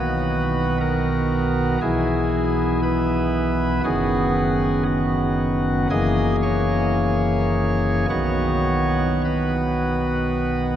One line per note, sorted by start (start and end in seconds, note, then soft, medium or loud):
0.00 1.78 B1 medium
0.00 1.78 B2 medium
0.00 1.78 D#3 soft
0.00 1.78 B3 soft
0.00 1.78 F#4 medium
0.00 0.78 B4 medium
0.80 1.79 A#4 medium
1.82 3.80 B1 medium
1.82 3.80 B2 medium
1.82 3.80 E3 medium
1.82 3.80 B3 medium
1.82 3.80 E4 medium
1.82 2.80 G#4 loud
2.83 3.81 B4 medium
3.84 5.87 F#1 medium
3.84 5.87 F#2 medium
3.84 5.86 D#3 medium
3.84 5.86 B3 medium
3.84 4.83 F#4 medium
3.84 4.83 G#4 loud
4.85 5.87 F#4 medium
5.90 8.06 F#1 medium
5.90 8.05 F#2 medium
5.90 8.06 E3 medium
5.90 8.05 A#3 medium
5.90 8.06 G#4 medium
5.90 6.35 D#5 loud
6.43 8.05 C#5 medium
8.10 10.76 B1 medium
8.10 10.76 B2 medium
8.10 10.76 D#3 soft
8.10 10.76 B3 medium
8.10 10.76 F#4 soft
8.10 9.21 C#5 loud
9.25 10.76 B4 medium